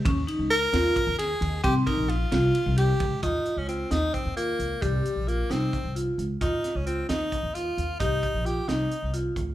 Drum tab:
RD |xxxxxxx|xxxxxxx|-------|-------|
HH |-------|-------|xxxxxxx|xxxxxxx|
SD |---o-o-|-o-o---|---o---|---o---|
BD |o---o--|oo----o|o---o--|o---o--|

RD |-------|-------|
HH |xxxxxxx|xxxxxxx|
SD |-o-o---|---o---|
BD |o---o--|oo----o|